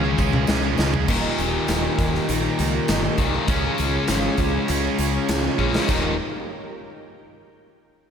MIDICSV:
0, 0, Header, 1, 7, 480
1, 0, Start_track
1, 0, Tempo, 600601
1, 869, Time_signature, 4, 2, 24, 8
1, 6477, End_track
2, 0, Start_track
2, 0, Title_t, "String machine"
2, 0, Program_c, 0, 50
2, 863, Note_on_c, 0, 67, 76
2, 866, Note_on_c, 0, 79, 79
2, 867, Note_on_c, 0, 63, 85
2, 867, Note_on_c, 0, 70, 86
2, 2767, Note_off_c, 0, 67, 0
2, 2768, Note_off_c, 0, 70, 0
2, 2768, Note_off_c, 0, 79, 0
2, 2769, Note_off_c, 0, 63, 0
2, 2780, Note_on_c, 0, 65, 83
2, 2785, Note_on_c, 0, 68, 87
2, 2786, Note_on_c, 0, 73, 93
2, 2788, Note_on_c, 0, 80, 86
2, 4685, Note_off_c, 0, 65, 0
2, 4688, Note_off_c, 0, 68, 0
2, 4688, Note_off_c, 0, 73, 0
2, 4689, Note_off_c, 0, 80, 0
2, 4706, Note_on_c, 0, 67, 82
2, 4709, Note_on_c, 0, 79, 81
2, 4712, Note_on_c, 0, 63, 78
2, 4713, Note_on_c, 0, 70, 84
2, 5040, Note_off_c, 0, 67, 0
2, 5042, Note_off_c, 0, 79, 0
2, 5043, Note_off_c, 0, 63, 0
2, 5044, Note_off_c, 0, 70, 0
2, 6477, End_track
3, 0, Start_track
3, 0, Title_t, "Twelve-string acoustic guitar"
3, 0, Program_c, 1, 25
3, 30, Note_on_c, 1, 68, 61
3, 38, Note_on_c, 1, 65, 60
3, 46, Note_on_c, 1, 61, 51
3, 144, Note_off_c, 1, 61, 0
3, 148, Note_on_c, 1, 53, 68
3, 149, Note_off_c, 1, 65, 0
3, 150, Note_off_c, 1, 68, 0
3, 154, Note_on_c, 1, 61, 74
3, 158, Note_on_c, 1, 65, 78
3, 162, Note_on_c, 1, 68, 78
3, 248, Note_off_c, 1, 68, 0
3, 258, Note_off_c, 1, 65, 0
3, 258, Note_on_c, 1, 68, 71
3, 265, Note_off_c, 1, 61, 0
3, 268, Note_on_c, 1, 65, 61
3, 269, Note_off_c, 1, 53, 0
3, 275, Note_on_c, 1, 61, 48
3, 377, Note_off_c, 1, 61, 0
3, 378, Note_off_c, 1, 65, 0
3, 379, Note_on_c, 1, 49, 85
3, 381, Note_off_c, 1, 68, 0
3, 381, Note_on_c, 1, 53, 83
3, 386, Note_on_c, 1, 61, 90
3, 388, Note_on_c, 1, 65, 75
3, 391, Note_on_c, 1, 68, 110
3, 493, Note_off_c, 1, 68, 0
3, 501, Note_off_c, 1, 65, 0
3, 503, Note_on_c, 1, 68, 65
3, 504, Note_off_c, 1, 49, 0
3, 505, Note_off_c, 1, 53, 0
3, 508, Note_off_c, 1, 61, 0
3, 511, Note_on_c, 1, 65, 58
3, 519, Note_on_c, 1, 61, 52
3, 861, Note_on_c, 1, 51, 85
3, 865, Note_off_c, 1, 61, 0
3, 866, Note_off_c, 1, 68, 0
3, 867, Note_on_c, 1, 55, 91
3, 868, Note_on_c, 1, 58, 85
3, 869, Note_off_c, 1, 65, 0
3, 871, Note_on_c, 1, 67, 87
3, 872, Note_on_c, 1, 63, 91
3, 1087, Note_off_c, 1, 55, 0
3, 1093, Note_off_c, 1, 58, 0
3, 1095, Note_off_c, 1, 63, 0
3, 1096, Note_on_c, 1, 55, 68
3, 1102, Note_off_c, 1, 67, 0
3, 1102, Note_on_c, 1, 58, 58
3, 1105, Note_off_c, 1, 51, 0
3, 1105, Note_on_c, 1, 63, 64
3, 1112, Note_on_c, 1, 67, 62
3, 1328, Note_off_c, 1, 55, 0
3, 1329, Note_off_c, 1, 58, 0
3, 1335, Note_on_c, 1, 51, 94
3, 1336, Note_off_c, 1, 63, 0
3, 1336, Note_off_c, 1, 67, 0
3, 1337, Note_on_c, 1, 55, 91
3, 1338, Note_on_c, 1, 58, 89
3, 1345, Note_on_c, 1, 67, 95
3, 1346, Note_on_c, 1, 63, 100
3, 1577, Note_off_c, 1, 55, 0
3, 1580, Note_off_c, 1, 58, 0
3, 1582, Note_off_c, 1, 51, 0
3, 1586, Note_on_c, 1, 55, 61
3, 1587, Note_off_c, 1, 63, 0
3, 1587, Note_off_c, 1, 67, 0
3, 1589, Note_on_c, 1, 58, 69
3, 1595, Note_on_c, 1, 63, 61
3, 1598, Note_on_c, 1, 67, 75
3, 1696, Note_off_c, 1, 67, 0
3, 1701, Note_off_c, 1, 63, 0
3, 1705, Note_on_c, 1, 67, 59
3, 1707, Note_off_c, 1, 55, 0
3, 1709, Note_off_c, 1, 58, 0
3, 1711, Note_on_c, 1, 63, 47
3, 1718, Note_on_c, 1, 58, 45
3, 1929, Note_off_c, 1, 67, 0
3, 1938, Note_on_c, 1, 67, 56
3, 1940, Note_off_c, 1, 63, 0
3, 1947, Note_off_c, 1, 58, 0
3, 1949, Note_on_c, 1, 63, 56
3, 1957, Note_on_c, 1, 58, 45
3, 2059, Note_off_c, 1, 58, 0
3, 2059, Note_on_c, 1, 55, 59
3, 2061, Note_off_c, 1, 63, 0
3, 2063, Note_off_c, 1, 67, 0
3, 2069, Note_on_c, 1, 58, 70
3, 2071, Note_on_c, 1, 63, 58
3, 2076, Note_on_c, 1, 67, 61
3, 2180, Note_off_c, 1, 67, 0
3, 2183, Note_off_c, 1, 55, 0
3, 2188, Note_off_c, 1, 58, 0
3, 2190, Note_off_c, 1, 63, 0
3, 2190, Note_on_c, 1, 67, 55
3, 2199, Note_on_c, 1, 63, 55
3, 2205, Note_on_c, 1, 58, 44
3, 2303, Note_off_c, 1, 58, 0
3, 2306, Note_off_c, 1, 63, 0
3, 2308, Note_on_c, 1, 51, 77
3, 2309, Note_off_c, 1, 67, 0
3, 2312, Note_on_c, 1, 55, 84
3, 2312, Note_on_c, 1, 58, 80
3, 2316, Note_on_c, 1, 63, 86
3, 2319, Note_on_c, 1, 67, 83
3, 2539, Note_off_c, 1, 55, 0
3, 2543, Note_off_c, 1, 58, 0
3, 2548, Note_off_c, 1, 51, 0
3, 2548, Note_off_c, 1, 63, 0
3, 2548, Note_on_c, 1, 55, 66
3, 2554, Note_off_c, 1, 67, 0
3, 2557, Note_on_c, 1, 63, 65
3, 2563, Note_on_c, 1, 67, 75
3, 2658, Note_off_c, 1, 67, 0
3, 2666, Note_off_c, 1, 63, 0
3, 2667, Note_on_c, 1, 67, 65
3, 2668, Note_off_c, 1, 55, 0
3, 2675, Note_on_c, 1, 63, 58
3, 2681, Note_on_c, 1, 58, 47
3, 2788, Note_off_c, 1, 67, 0
3, 2788, Note_on_c, 1, 49, 83
3, 2792, Note_off_c, 1, 63, 0
3, 2795, Note_off_c, 1, 58, 0
3, 2795, Note_on_c, 1, 53, 84
3, 2797, Note_on_c, 1, 65, 97
3, 2798, Note_on_c, 1, 61, 99
3, 2801, Note_on_c, 1, 68, 96
3, 3018, Note_off_c, 1, 53, 0
3, 3023, Note_off_c, 1, 61, 0
3, 3027, Note_off_c, 1, 65, 0
3, 3027, Note_on_c, 1, 53, 62
3, 3028, Note_off_c, 1, 49, 0
3, 3032, Note_off_c, 1, 68, 0
3, 3033, Note_on_c, 1, 61, 71
3, 3036, Note_on_c, 1, 65, 78
3, 3042, Note_on_c, 1, 68, 72
3, 3261, Note_off_c, 1, 53, 0
3, 3262, Note_off_c, 1, 61, 0
3, 3266, Note_off_c, 1, 65, 0
3, 3267, Note_off_c, 1, 68, 0
3, 3270, Note_on_c, 1, 49, 91
3, 3271, Note_on_c, 1, 53, 106
3, 3272, Note_on_c, 1, 61, 100
3, 3276, Note_on_c, 1, 65, 106
3, 3277, Note_on_c, 1, 68, 114
3, 3492, Note_off_c, 1, 53, 0
3, 3500, Note_off_c, 1, 61, 0
3, 3502, Note_off_c, 1, 65, 0
3, 3502, Note_on_c, 1, 53, 72
3, 3508, Note_off_c, 1, 68, 0
3, 3509, Note_off_c, 1, 49, 0
3, 3510, Note_on_c, 1, 61, 57
3, 3512, Note_on_c, 1, 65, 67
3, 3518, Note_on_c, 1, 68, 79
3, 3849, Note_off_c, 1, 68, 0
3, 3856, Note_off_c, 1, 65, 0
3, 3859, Note_on_c, 1, 68, 70
3, 3862, Note_off_c, 1, 61, 0
3, 3865, Note_off_c, 1, 53, 0
3, 3865, Note_on_c, 1, 65, 47
3, 3871, Note_on_c, 1, 61, 51
3, 3981, Note_off_c, 1, 61, 0
3, 3983, Note_off_c, 1, 65, 0
3, 3984, Note_off_c, 1, 68, 0
3, 3985, Note_on_c, 1, 53, 61
3, 3991, Note_on_c, 1, 61, 66
3, 3993, Note_on_c, 1, 65, 65
3, 3999, Note_on_c, 1, 68, 71
3, 4098, Note_off_c, 1, 68, 0
3, 4106, Note_off_c, 1, 65, 0
3, 4107, Note_off_c, 1, 53, 0
3, 4108, Note_on_c, 1, 68, 54
3, 4110, Note_off_c, 1, 61, 0
3, 4116, Note_on_c, 1, 65, 50
3, 4125, Note_on_c, 1, 61, 51
3, 4221, Note_off_c, 1, 61, 0
3, 4225, Note_off_c, 1, 65, 0
3, 4225, Note_on_c, 1, 49, 80
3, 4228, Note_off_c, 1, 68, 0
3, 4230, Note_on_c, 1, 53, 70
3, 4230, Note_on_c, 1, 61, 90
3, 4234, Note_on_c, 1, 65, 82
3, 4239, Note_on_c, 1, 68, 83
3, 4450, Note_off_c, 1, 53, 0
3, 4455, Note_off_c, 1, 61, 0
3, 4460, Note_on_c, 1, 53, 76
3, 4462, Note_off_c, 1, 65, 0
3, 4464, Note_off_c, 1, 68, 0
3, 4465, Note_on_c, 1, 61, 77
3, 4467, Note_off_c, 1, 49, 0
3, 4471, Note_on_c, 1, 65, 72
3, 4474, Note_on_c, 1, 68, 77
3, 4565, Note_off_c, 1, 68, 0
3, 4574, Note_off_c, 1, 65, 0
3, 4575, Note_on_c, 1, 68, 62
3, 4581, Note_off_c, 1, 61, 0
3, 4584, Note_off_c, 1, 53, 0
3, 4584, Note_on_c, 1, 65, 58
3, 4591, Note_on_c, 1, 61, 49
3, 4692, Note_on_c, 1, 51, 82
3, 4699, Note_off_c, 1, 61, 0
3, 4701, Note_on_c, 1, 55, 84
3, 4702, Note_off_c, 1, 68, 0
3, 4703, Note_on_c, 1, 58, 86
3, 4705, Note_off_c, 1, 65, 0
3, 4708, Note_on_c, 1, 63, 85
3, 4715, Note_on_c, 1, 67, 92
3, 4892, Note_off_c, 1, 51, 0
3, 4897, Note_off_c, 1, 55, 0
3, 4898, Note_off_c, 1, 58, 0
3, 4901, Note_off_c, 1, 63, 0
3, 4904, Note_off_c, 1, 67, 0
3, 6477, End_track
4, 0, Start_track
4, 0, Title_t, "Distorted electric guitar"
4, 0, Program_c, 2, 30
4, 26, Note_on_c, 2, 68, 78
4, 38, Note_on_c, 2, 65, 64
4, 44, Note_on_c, 2, 61, 51
4, 139, Note_off_c, 2, 61, 0
4, 142, Note_on_c, 2, 56, 82
4, 147, Note_off_c, 2, 65, 0
4, 149, Note_on_c, 2, 61, 89
4, 154, Note_off_c, 2, 68, 0
4, 156, Note_on_c, 2, 65, 76
4, 164, Note_on_c, 2, 68, 98
4, 377, Note_off_c, 2, 56, 0
4, 382, Note_on_c, 2, 49, 86
4, 384, Note_off_c, 2, 61, 0
4, 386, Note_on_c, 2, 56, 90
4, 390, Note_off_c, 2, 65, 0
4, 393, Note_off_c, 2, 68, 0
4, 394, Note_on_c, 2, 61, 92
4, 400, Note_on_c, 2, 65, 93
4, 403, Note_on_c, 2, 68, 101
4, 490, Note_off_c, 2, 68, 0
4, 499, Note_off_c, 2, 65, 0
4, 500, Note_on_c, 2, 68, 80
4, 509, Note_on_c, 2, 65, 63
4, 511, Note_off_c, 2, 61, 0
4, 521, Note_on_c, 2, 61, 66
4, 607, Note_off_c, 2, 56, 0
4, 615, Note_off_c, 2, 61, 0
4, 617, Note_on_c, 2, 56, 89
4, 622, Note_off_c, 2, 65, 0
4, 625, Note_on_c, 2, 61, 96
4, 627, Note_off_c, 2, 68, 0
4, 632, Note_on_c, 2, 65, 87
4, 637, Note_on_c, 2, 68, 90
4, 730, Note_off_c, 2, 68, 0
4, 739, Note_off_c, 2, 65, 0
4, 740, Note_on_c, 2, 68, 70
4, 745, Note_off_c, 2, 49, 0
4, 747, Note_off_c, 2, 61, 0
4, 748, Note_on_c, 2, 65, 68
4, 757, Note_on_c, 2, 61, 66
4, 848, Note_off_c, 2, 56, 0
4, 850, Note_off_c, 2, 68, 0
4, 851, Note_on_c, 2, 39, 79
4, 854, Note_off_c, 2, 65, 0
4, 858, Note_off_c, 2, 61, 0
4, 864, Note_on_c, 2, 46, 98
4, 876, Note_on_c, 2, 51, 94
4, 1805, Note_off_c, 2, 39, 0
4, 1812, Note_off_c, 2, 46, 0
4, 1817, Note_off_c, 2, 51, 0
4, 1820, Note_on_c, 2, 39, 63
4, 1832, Note_on_c, 2, 46, 68
4, 1840, Note_on_c, 2, 51, 74
4, 2770, Note_off_c, 2, 39, 0
4, 2775, Note_off_c, 2, 46, 0
4, 2778, Note_on_c, 2, 49, 91
4, 2780, Note_off_c, 2, 51, 0
4, 2790, Note_on_c, 2, 56, 101
4, 2799, Note_on_c, 2, 61, 102
4, 3729, Note_off_c, 2, 49, 0
4, 3735, Note_off_c, 2, 56, 0
4, 3739, Note_off_c, 2, 61, 0
4, 3739, Note_on_c, 2, 49, 75
4, 3752, Note_on_c, 2, 56, 76
4, 3760, Note_on_c, 2, 61, 80
4, 4689, Note_off_c, 2, 49, 0
4, 4696, Note_off_c, 2, 56, 0
4, 4700, Note_off_c, 2, 61, 0
4, 4707, Note_on_c, 2, 39, 101
4, 4714, Note_on_c, 2, 46, 104
4, 4716, Note_on_c, 2, 51, 108
4, 4900, Note_off_c, 2, 39, 0
4, 4903, Note_off_c, 2, 46, 0
4, 4904, Note_off_c, 2, 51, 0
4, 6477, End_track
5, 0, Start_track
5, 0, Title_t, "Overdriven electric guitar"
5, 0, Program_c, 3, 29
5, 0, Note_on_c, 3, 49, 87
5, 0, Note_on_c, 3, 56, 106
5, 0, Note_on_c, 3, 61, 113
5, 853, Note_off_c, 3, 49, 0
5, 857, Note_off_c, 3, 56, 0
5, 861, Note_off_c, 3, 61, 0
5, 2539, Note_on_c, 3, 51, 81
5, 2550, Note_on_c, 3, 46, 69
5, 2559, Note_on_c, 3, 39, 63
5, 2769, Note_off_c, 3, 51, 0
5, 2774, Note_off_c, 3, 46, 0
5, 2779, Note_off_c, 3, 39, 0
5, 4462, Note_on_c, 3, 61, 90
5, 4471, Note_on_c, 3, 56, 80
5, 4479, Note_on_c, 3, 49, 72
5, 4691, Note_off_c, 3, 61, 0
5, 4695, Note_off_c, 3, 56, 0
5, 4699, Note_off_c, 3, 49, 0
5, 6477, End_track
6, 0, Start_track
6, 0, Title_t, "Fingered electric bass"
6, 0, Program_c, 4, 33
6, 0, Note_on_c, 4, 37, 94
6, 147, Note_off_c, 4, 37, 0
6, 153, Note_on_c, 4, 37, 99
6, 382, Note_off_c, 4, 37, 0
6, 391, Note_on_c, 4, 37, 93
6, 622, Note_off_c, 4, 37, 0
6, 631, Note_on_c, 4, 37, 95
6, 861, Note_off_c, 4, 37, 0
6, 871, Note_on_c, 4, 27, 82
6, 1016, Note_off_c, 4, 27, 0
6, 1109, Note_on_c, 4, 27, 83
6, 1255, Note_off_c, 4, 27, 0
6, 1349, Note_on_c, 4, 27, 86
6, 1495, Note_off_c, 4, 27, 0
6, 1591, Note_on_c, 4, 27, 79
6, 1736, Note_off_c, 4, 27, 0
6, 1833, Note_on_c, 4, 34, 82
6, 1977, Note_off_c, 4, 34, 0
6, 2076, Note_on_c, 4, 37, 95
6, 2220, Note_off_c, 4, 37, 0
6, 2312, Note_on_c, 4, 31, 85
6, 2457, Note_off_c, 4, 31, 0
6, 2545, Note_on_c, 4, 36, 83
6, 2692, Note_off_c, 4, 36, 0
6, 2784, Note_on_c, 4, 37, 89
6, 2932, Note_off_c, 4, 37, 0
6, 3033, Note_on_c, 4, 37, 84
6, 3178, Note_off_c, 4, 37, 0
6, 3270, Note_on_c, 4, 32, 94
6, 3416, Note_off_c, 4, 32, 0
6, 3505, Note_on_c, 4, 37, 88
6, 3652, Note_off_c, 4, 37, 0
6, 3754, Note_on_c, 4, 37, 91
6, 3898, Note_off_c, 4, 37, 0
6, 3988, Note_on_c, 4, 37, 92
6, 4135, Note_off_c, 4, 37, 0
6, 4228, Note_on_c, 4, 37, 90
6, 4375, Note_off_c, 4, 37, 0
6, 4469, Note_on_c, 4, 34, 88
6, 4615, Note_off_c, 4, 34, 0
6, 4710, Note_on_c, 4, 27, 92
6, 4932, Note_off_c, 4, 27, 0
6, 6477, End_track
7, 0, Start_track
7, 0, Title_t, "Drums"
7, 145, Note_on_c, 9, 54, 71
7, 149, Note_on_c, 9, 36, 74
7, 225, Note_off_c, 9, 54, 0
7, 228, Note_off_c, 9, 36, 0
7, 266, Note_on_c, 9, 47, 77
7, 346, Note_off_c, 9, 47, 0
7, 377, Note_on_c, 9, 54, 91
7, 387, Note_on_c, 9, 38, 96
7, 457, Note_off_c, 9, 54, 0
7, 467, Note_off_c, 9, 38, 0
7, 620, Note_on_c, 9, 54, 74
7, 630, Note_on_c, 9, 38, 100
7, 700, Note_off_c, 9, 54, 0
7, 710, Note_off_c, 9, 38, 0
7, 748, Note_on_c, 9, 43, 103
7, 828, Note_off_c, 9, 43, 0
7, 864, Note_on_c, 9, 49, 114
7, 867, Note_on_c, 9, 36, 114
7, 944, Note_off_c, 9, 49, 0
7, 947, Note_off_c, 9, 36, 0
7, 1106, Note_on_c, 9, 42, 70
7, 1186, Note_off_c, 9, 42, 0
7, 1345, Note_on_c, 9, 42, 78
7, 1345, Note_on_c, 9, 54, 92
7, 1351, Note_on_c, 9, 38, 83
7, 1425, Note_off_c, 9, 42, 0
7, 1425, Note_off_c, 9, 54, 0
7, 1431, Note_off_c, 9, 38, 0
7, 1587, Note_on_c, 9, 36, 83
7, 1588, Note_on_c, 9, 42, 69
7, 1667, Note_off_c, 9, 36, 0
7, 1668, Note_off_c, 9, 42, 0
7, 1716, Note_on_c, 9, 38, 28
7, 1796, Note_off_c, 9, 38, 0
7, 1827, Note_on_c, 9, 42, 91
7, 1907, Note_off_c, 9, 42, 0
7, 2069, Note_on_c, 9, 42, 75
7, 2149, Note_off_c, 9, 42, 0
7, 2303, Note_on_c, 9, 42, 91
7, 2309, Note_on_c, 9, 38, 108
7, 2309, Note_on_c, 9, 54, 84
7, 2383, Note_off_c, 9, 42, 0
7, 2388, Note_off_c, 9, 38, 0
7, 2389, Note_off_c, 9, 54, 0
7, 2541, Note_on_c, 9, 42, 62
7, 2544, Note_on_c, 9, 36, 80
7, 2621, Note_off_c, 9, 42, 0
7, 2624, Note_off_c, 9, 36, 0
7, 2780, Note_on_c, 9, 42, 91
7, 2784, Note_on_c, 9, 36, 106
7, 2860, Note_off_c, 9, 42, 0
7, 2863, Note_off_c, 9, 36, 0
7, 3021, Note_on_c, 9, 42, 63
7, 3101, Note_off_c, 9, 42, 0
7, 3258, Note_on_c, 9, 42, 75
7, 3263, Note_on_c, 9, 38, 91
7, 3267, Note_on_c, 9, 54, 95
7, 3338, Note_off_c, 9, 42, 0
7, 3343, Note_off_c, 9, 38, 0
7, 3346, Note_off_c, 9, 54, 0
7, 3496, Note_on_c, 9, 42, 63
7, 3503, Note_on_c, 9, 36, 74
7, 3576, Note_off_c, 9, 42, 0
7, 3582, Note_off_c, 9, 36, 0
7, 3742, Note_on_c, 9, 42, 82
7, 3822, Note_off_c, 9, 42, 0
7, 3984, Note_on_c, 9, 42, 68
7, 4064, Note_off_c, 9, 42, 0
7, 4225, Note_on_c, 9, 42, 86
7, 4226, Note_on_c, 9, 54, 99
7, 4230, Note_on_c, 9, 38, 116
7, 4305, Note_off_c, 9, 42, 0
7, 4306, Note_off_c, 9, 54, 0
7, 4310, Note_off_c, 9, 38, 0
7, 4466, Note_on_c, 9, 36, 59
7, 4546, Note_off_c, 9, 36, 0
7, 4596, Note_on_c, 9, 38, 102
7, 4676, Note_off_c, 9, 38, 0
7, 4699, Note_on_c, 9, 54, 81
7, 4706, Note_on_c, 9, 36, 102
7, 4706, Note_on_c, 9, 49, 81
7, 4779, Note_off_c, 9, 54, 0
7, 4786, Note_off_c, 9, 36, 0
7, 4786, Note_off_c, 9, 49, 0
7, 6477, End_track
0, 0, End_of_file